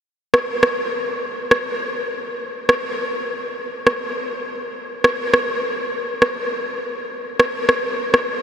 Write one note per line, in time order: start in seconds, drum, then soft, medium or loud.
0.34 cross-stick loud
0.63 cross-stick medium
1.51 cross-stick medium
2.69 cross-stick loud
3.87 cross-stick medium
5.04 cross-stick loud
5.34 cross-stick medium
6.22 cross-stick medium
7.40 cross-stick loud
7.69 cross-stick medium
8.14 cross-stick medium